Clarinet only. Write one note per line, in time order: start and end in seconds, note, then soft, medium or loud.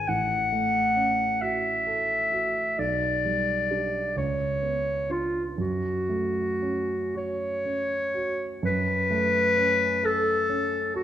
0.08 1.43 F#5 medium
1.41 2.80 E5 medium
2.78 4.17 D5 medium
4.17 5.13 C#5 medium
5.11 5.45 F4 medium
5.59 7.12 F#4 medium
7.17 8.60 C#5 medium
8.65 10.07 B4 loud
10.05 10.95 A4 medium
10.95 11.03 F#4 medium